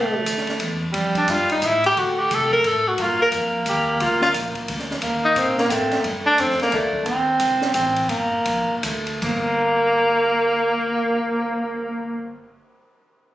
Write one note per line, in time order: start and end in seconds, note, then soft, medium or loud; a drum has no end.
0.00 0.25 C2 medium
0.00 0.77 A3 medium
0.00 0.23 C4 medium
0.26 0.59 D2 medium
0.26 kick soft
0.26 hi-hat pedal medium
0.26 ride medium
0.38 snare soft
0.47 snare soft
0.47 ride soft
0.60 0.93 E2 medium
0.60 kick soft
0.60 ride medium
0.92 1.27 F2 medium
0.92 1.66 G3 medium
0.92 kick soft
0.92 ride medium
1.15 1.32 D4 medium
1.15 kick medium
1.15 ride soft
1.28 1.61 G2 medium
1.28 1.50 F4 medium
1.28 kick soft
1.28 hi-hat pedal soft
1.28 ride medium
1.49 1.67 D#4 medium
1.49 ride soft
1.62 1.95 A2 medium
1.62 1.85 E4 medium
1.62 kick soft
1.62 hi-hat pedal medium
1.62 ride medium
1.84 2.00 G4 loud
1.84 ride soft
1.94 2.29 D3 medium
1.94 2.93 A3 medium
1.94 kick soft
1.94 ride medium
1.99 2.20 F#4 medium
2.19 2.35 G4 medium
2.30 2.63 C3 medium
2.30 2.52 A4 medium
2.30 kick soft
2.30 hi-hat pedal medium
2.30 ride medium
2.51 2.69 A#4 loud
2.51 kick medium
2.64 2.97 A2 medium
2.64 2.89 A4 medium
2.64 kick soft
2.64 ride medium
2.88 3.03 F#4 medium
2.98 3.31 G2 medium
2.98 4.85 A#3 medium
2.98 kick soft
2.98 ride medium
3.02 3.21 F4 medium
3.22 3.29 A#4 medium
3.32 3.65 F2 medium
3.32 kick soft
3.32 hi-hat pedal medium
3.32 ride medium
3.66 3.99 D#2 medium
3.66 4.03 G4 medium
3.66 kick soft
3.66 hi-hat pedal medium
3.66 ride medium
4.00 4.33 D2 medium
4.00 4.22 F4 medium
4.00 kick soft
4.00 ride medium
4.22 4.30 F4 medium
4.22 snare medium
4.34 4.54 A#1 medium
4.34 kick soft
4.34 hi-hat pedal medium
4.34 ride medium
4.55 muted upright bass stroke soft
4.55 kick soft
4.55 ride soft
4.68 5.01 D2 medium
4.68 kick soft
4.68 ride medium
4.79 snare soft
4.91 snare soft
5.02 5.35 D#2 medium
5.02 5.70 A#3 medium
5.02 kick soft
5.02 ride medium
5.25 5.39 D#4 medium
5.36 5.69 A#2 medium
5.36 5.58 C4 medium
5.36 kick soft
5.36 hi-hat pedal medium
5.36 ride medium
5.58 5.73 A#3 medium
5.58 snare medium
5.69 5.90 A2 medium
5.69 6.05 A3 medium
5.69 6.02 C4 medium
5.69 kick soft
5.69 hi-hat pedal medium
5.69 ride medium
5.91 muted upright bass stroke soft
5.91 snare soft
5.91 ride soft
6.00 6.73 A3 medium
6.00 6.05 A#3 medium
6.00 ride medium
6.04 6.37 G2 medium
6.04 kick soft
6.26 6.42 D4 loud
6.38 6.58 F2 medium
6.38 6.60 C4 medium
6.38 kick soft
6.38 hi-hat pedal soft
6.38 ride medium
6.50 snare soft
6.59 6.77 A#3 medium
6.59 muted upright bass stroke soft
6.59 snare soft
6.59 ride soft
6.71 7.05 D2 medium
6.71 7.04 D4 loud
6.71 kick soft
6.71 ride medium
6.75 7.07 A3 medium
6.93 kick medium
7.05 7.39 D#2 medium
7.05 7.70 C4 medium
7.05 kick soft
7.05 ride medium
7.40 7.73 C2 medium
7.40 kick soft
7.40 hi-hat pedal soft
7.40 ride medium
7.62 snare medium
7.74 8.08 A1 medium
7.74 8.11 C4 medium
7.74 kick soft
7.74 hi-hat pedal medium
7.74 ride medium
7.96 ride soft
8.09 8.30 G1 medium
8.09 8.76 A#3 medium
8.09 kick soft
8.09 ride medium
8.33 muted upright bass stroke soft
8.46 8.67 A#1 medium
8.46 kick soft
8.46 ride medium
8.69 muted upright bass stroke soft
8.76 8.85 A#3 soft
8.83 9.21 D2 medium
8.83 9.21 A3 medium
8.83 kick soft
8.83 hi-hat pedal medium
8.83 ride medium
9.07 ride soft
9.22 12.35 G1 medium
9.22 12.35 A#3 medium
9.22 kick medium
9.22 crash medium
9.47 cymbal swell soft